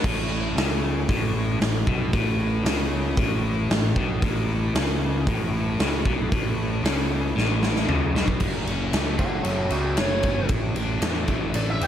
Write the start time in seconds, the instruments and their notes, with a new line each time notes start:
0.04 picked electric bass A1, distorted electric guitar A2, kick, crash
0.56 picked electric bass C#2, distorted electric guitar C#3, snare, open hi-hat
1.08 picked electric bass A1, distorted electric guitar A2, kick, open hi-hat
1.60 picked electric bass A1, distorted electric guitar A2, snare, open hi-hat
1.86 picked electric bass B1, distorted electric guitar B2, kick
2.13 picked electric bass A1, distorted electric guitar A2, kick, open hi-hat
2.65 picked electric bass C#2, distorted electric guitar C#3, snare, open hi-hat
3.17 picked electric bass A1, distorted electric guitar A2, kick, open hi-hat
3.70 picked electric bass A1, distorted electric guitar A2, snare, open hi-hat
3.96 picked electric bass B1, distorted electric guitar B2, kick
4.22 picked electric bass A1, distorted electric guitar A2, kick, open hi-hat
4.75 picked electric bass C#2, distorted electric guitar C#3, snare, open hi-hat
5.27 picked electric bass A1, distorted electric guitar A2, kick, open hi-hat
5.79 picked electric bass C#2, distorted electric guitar C#3, snare, open hi-hat
6.05 picked electric bass B1, distorted electric guitar B2, kick
6.32 picked electric bass A1, distorted electric guitar A2, kick, open hi-hat
6.83 picked electric bass C#2, distorted electric guitar C#3, snare, open hi-hat
7.35 picked electric bass A1, distorted electric guitar A2, snare
7.63 snare
7.76 snare
7.88 picked electric bass C#2, distorted electric guitar C#3, mid tom
8.14 picked electric bass B1, distorted electric guitar B2, snare
8.28 kick
8.40 picked electric bass F#1, distorted electric guitar F#2, kick, crash
8.66 picked electric bass F#1, distorted electric guitar C#4, ride
8.93 picked electric bass C#2, distorted electric guitar A3, snare, ride
9.18 picked electric bass F#1, distorted electric guitar F#3, lead electric guitar D5 F#5, kick, ride
9.43 picked electric bass F#1, distorted electric guitar C#3, lead electric guitar C#5 E5, ride
9.70 picked electric bass C#2, distorted electric guitar F#3, lead electric guitar F#4 D5, ride
9.97 picked electric bass F#1, distorted electric guitar A3, lead electric guitar C#5, snare, ride
10.23 picked electric bass G1, distorted electric guitar C#4, kick, ride
10.49 picked electric bass A1, distorted electric guitar A2, kick, ride
10.75 picked electric bass A1, distorted electric guitar D4, ride
11.00 picked electric bass E2, distorted electric guitar A3, snare, ride
11.27 picked electric bass A1, distorted electric guitar E3, kick, ride
11.54 picked electric bass A1, distorted electric guitar D3, lead electric guitar D5, ride
11.70 lead electric guitar E5
11.80 picked electric bass E2, distorted electric guitar E3, lead electric guitar G5, ride